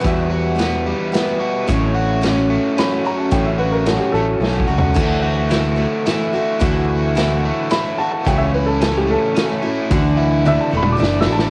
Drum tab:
CC |---------|---------|---------|x--------|
HH |x--x--x--|x--x--x--|x--x-----|x--x--x--|
SD |---o--o--|---o--o--|---o--o--|---o--o--|
T1 |---------|---------|---------|---------|
T2 |---------|---------|---------|---------|
FT |---------|---------|--------o|---------|
BD |o--------|o--------|o------o-|o--------|

CC |---------|---------|---------|
HH |x--x--x--|x--x--x--|x--------|
SD |---o--o--|---o--o--|------ooo|
T1 |---------|---------|---o-----|
T2 |---------|---------|-----o---|
FT |---------|---------|---------|
BD |o--------|o--------|o--------|